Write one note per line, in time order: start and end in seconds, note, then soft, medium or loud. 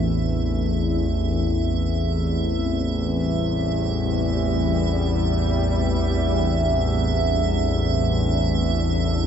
0.00 9.27 A1 medium
0.00 9.27 E2 medium
0.00 1.20 E3 medium
0.00 1.20 A3 medium
0.00 1.21 C4 medium
0.00 1.20 D4 medium
0.00 1.17 E5 medium
1.19 9.27 A2 medium
1.19 9.27 E5 medium
1.47 9.27 E3 medium
1.83 9.27 C4 medium
2.86 9.27 G3 medium
5.85 9.27 D4 medium